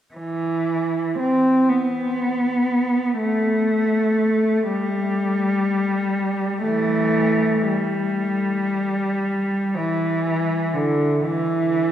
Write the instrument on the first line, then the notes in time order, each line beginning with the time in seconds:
cello
0.14 E3
1.18 C4
1.69 B3
3.18 A3
4.69 G3
6.63 E3 A3
7.68 G3
9.76 E3
10.73 D3
11.24 E3